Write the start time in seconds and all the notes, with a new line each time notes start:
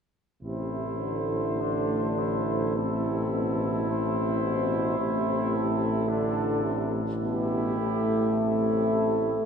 0.42 A1 C3 A3 E4 C5
1.00 D3
1.61 D4
2.19 E4
2.76 C3 C4 E4 A4
3.33 B2
3.89 A2 C4 C5
4.44 B2
4.99 A1 C3 A3 C5
5.54 A4
6.09 D3 D4 A4
6.64 C3
7.20 B2 B3 E4 G4
7.79 A2 A3
8.41 C3 E4 A4